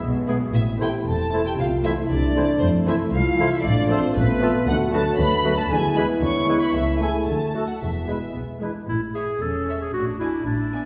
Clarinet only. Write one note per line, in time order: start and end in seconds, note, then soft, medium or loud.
0.29 0.38 G#4 medium
0.81 0.90 E4 medium
1.34 1.43 E4 medium
1.86 1.94 E4 medium
2.37 2.46 E4 medium
2.89 2.98 E4 medium
3.40 3.49 E4 medium
3.91 4.00 F4 medium
4.43 4.52 F4 medium
4.94 5.03 F#4 medium
5.45 5.54 F#4 medium
5.97 6.06 E4 medium
6.49 6.58 E4 medium
7.02 7.11 E4 soft
7.55 7.64 F#4 soft
8.08 8.17 E4 soft
8.62 8.72 E4 soft
8.89 9.01 E4 medium
9.15 9.43 G#4 medium
9.41 9.81 A4 medium
9.81 9.93 G#4 medium
9.93 10.05 F#4 medium
10.19 10.45 E4 medium
10.45 10.85 D4 medium